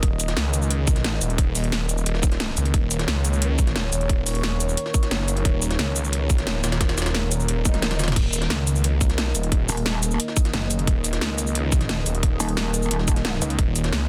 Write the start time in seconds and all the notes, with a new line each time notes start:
Already playing: D#3 A#3 A#4 D#5
0.03 D#1, kick, closed hi-hat
0.20 closed hi-hat, cabasa
0.28 snare, closed hi-hat
0.37 C#2, snare, closed hi-hat
0.54 closed hi-hat, cabasa
0.62 cabasa
0.71 closed hi-hat
0.87 kick, closed hi-hat, cabasa
0.96 snare, closed hi-hat
1.04 snare, closed hi-hat
1.13 snare
1.21 D#1, closed hi-hat, cabasa
1.30 closed hi-hat
1.38 kick, closed hi-hat
1.55 D#1, closed hi-hat, open hi-hat, cabasa
1.64 closed hi-hat
1.72 snare, closed hi-hat
1.89 closed hi-hat, cabasa
1.98 cabasa
2.06 D#1, closed hi-hat
2.15 snare
2.23 kick, closed hi-hat, cabasa
2.32 snare, closed hi-hat
2.40 snare, closed hi-hat
2.49 snare
2.57 C#2, closed hi-hat, cabasa
2.65 closed hi-hat
2.74 D#1 C#5, kick, closed hi-hat
2.91 closed hi-hat, cabasa
2.99 snare, closed hi-hat
3.08 C#2, snare, closed hi-hat
3.25 closed hi-hat, cabasa
3.33 cabasa
3.42 closed hi-hat
3.59 kick, closed hi-hat, cabasa
3.67 snare, closed hi-hat
3.76 snare, closed hi-hat
3.84 snare
3.93 D#1, closed hi-hat, cabasa
4.01 closed hi-hat
4.09 kick, closed hi-hat
4.26 D#1, closed hi-hat, open hi-hat, cabasa
4.35 closed hi-hat
4.43 snare, closed hi-hat
4.60 closed hi-hat, cabasa
4.69 cabasa
4.77 closed hi-hat
4.86 snare
4.94 kick, closed hi-hat, cabasa
5.03 snare, closed hi-hat
5.11 F#1, snare, closed hi-hat
5.20 snare
5.28 closed hi-hat, cabasa
5.37 closed hi-hat
5.45 D#1, kick, closed hi-hat
5.62 closed hi-hat, cabasa
5.71 snare, closed hi-hat
5.79 C#2, snare, closed hi-hat
5.96 closed hi-hat, cabasa
6.04 cabasa
6.13 closed hi-hat
6.30 kick, closed hi-hat, cabasa
6.38 snare, closed hi-hat
6.47 snare, closed hi-hat
6.55 snare
6.64 D#1, snare, closed hi-hat, cabasa
6.72 snare, closed hi-hat
6.81 kick, snare, closed hi-hat
6.89 snare, closed hi-hat
6.98 D#1, snare, closed hi-hat, cabasa
7.02 snare, closed hi-hat
7.06 snare, closed hi-hat
7.15 snare, closed hi-hat
7.32 closed hi-hat, cabasa
7.40 cabasa
7.48 D#1, closed hi-hat, swell
7.65 D#1, kick, closed hi-hat, high tom, cabasa
7.74 snare, closed hi-hat, high tom
7.82 snare, closed hi-hat, mid tom
7.91 snare, closed hi-hat, mid tom
7.99 snare, closed hi-hat, cabasa
8.04 snare, closed hi-hat
8.08 snare, closed hi-hat, mid tom
8.12 snare, closed hi-hat
8.16 D#1 D#5, kick, closed hi-hat, crash
8.33 closed hi-hat, cabasa
8.42 snare, closed hi-hat
8.50 C#2, snare, closed hi-hat
8.67 closed hi-hat, cabasa
8.76 cabasa
8.84 closed hi-hat
9.01 kick, closed hi-hat, cabasa
9.09 C2, snare, closed hi-hat
9.18 snare, closed hi-hat
9.26 snare
9.35 D#1, closed hi-hat, cabasa
9.43 closed hi-hat
9.52 kick, closed hi-hat
9.69 D#1, closed hi-hat, open hi-hat, cabasa
9.77 closed hi-hat
9.86 snare, closed hi-hat
10.03 closed hi-hat, cabasa
10.11 cabasa
10.20 closed hi-hat
10.28 snare
10.37 kick, closed hi-hat, cabasa
10.45 snare, closed hi-hat
10.54 F#1, snare, closed hi-hat
10.62 snare
10.71 closed hi-hat, cabasa
10.79 closed hi-hat
10.87 D#1, kick, closed hi-hat
11.04 closed hi-hat, cabasa
11.13 snare, closed hi-hat
11.21 C#2, snare, closed hi-hat
11.38 closed hi-hat, cabasa
11.47 cabasa
11.55 closed hi-hat
11.72 kick, closed hi-hat, cabasa
11.81 snare, closed hi-hat
11.89 snare, closed hi-hat
11.98 snare
12.06 D#1, closed hi-hat, cabasa
12.15 closed hi-hat
12.23 kick, closed hi-hat
12.40 D#1, closed hi-hat, open hi-hat, cabasa
12.49 closed hi-hat
12.57 snare, closed hi-hat
12.74 closed hi-hat, cabasa
12.82 cabasa
12.91 D#1, closed hi-hat
12.99 snare
13.08 kick, closed hi-hat, cabasa
13.16 snare, closed hi-hat
13.25 snare, closed hi-hat
13.33 snare
13.42 C#2, closed hi-hat, cabasa
13.50 closed hi-hat
13.59 D#1 C#5, kick, closed hi-hat
13.76 closed hi-hat, cabasa
13.84 snare, closed hi-hat
13.93 C#2, snare, closed hi-hat